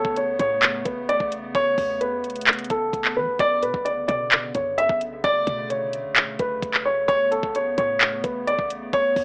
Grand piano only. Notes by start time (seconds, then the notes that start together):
Already playing: A4
0.17 C#5
0.40 C#5
0.85 B4
1.09 D5
1.55 C#5
2.01 B4
2.70 A4
3.17 B4
3.40 D5
3.63 B4
3.85 D5
4.08 D5
4.55 C#5
4.78 E5
5.24 D5
5.70 C#5
6.40 B4
6.85 C#5
7.08 C#5
7.31 A4
7.56 C#5
7.78 C#5
8.24 B4
8.47 D5
8.93 C#5